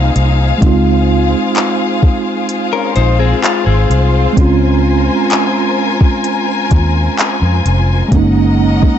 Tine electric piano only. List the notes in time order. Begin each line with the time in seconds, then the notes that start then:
Already playing: A#3 C4 D#4 F4
0.58 G#3 C4
0.64 D#4 F4
4.33 G#3 C4
4.39 C#4 F4
8.08 G#3 A#3
8.14 C#4 D#4